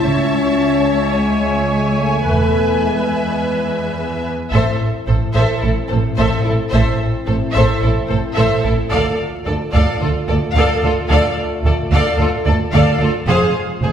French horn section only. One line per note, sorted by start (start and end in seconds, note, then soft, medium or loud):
0.03 1.12 C#4 medium
1.14 1.96 G#3 medium
1.97 2.24 A3 soft
2.25 2.82 A3 medium
2.83 3.96 G#3 soft
4.52 8.87 C4 soft
4.52 8.87 E4 soft
8.89 13.10 A3 medium
8.89 13.10 F4 medium
13.27 13.92 G#3 medium
13.27 13.92 F4 medium